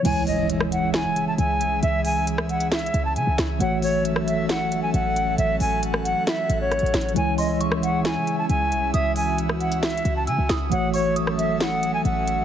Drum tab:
CC |x-----------------------------------------------|------------------------------------------------|------------------------------------------------|------------------------------------------------|
HH |x-----o-----x-----x-----x-----x-----x-----x-----|x-----o-----x-----x--x--x-x-x-x-----x-----x-----|x-----o-----x-----x-----x-----x-----x-----x-----|x-----o-----x-----x-----x-----x-----x-x-x-x-x-x-|
SD |---------------r--------o-----------------------|---------------r--------o-----------------o-----|---------------r--------o-----------------------|---------------r--------o-----------r-----o-----|

CC |------------------------------------------------|------------------------------------------------|------------------------------------------------|
HH |x-----o-----x-----x-----x-----x-----x-----x-----|x-----o-----x-----x--x--x-x-x-x-----x-----x-----|x-----o-----x-----x-----x-----x-----x-----x-----|
SD |---------------r--------o-----------------------|---------------r--------o-----------------o-----|---------------r--------o-----------------------|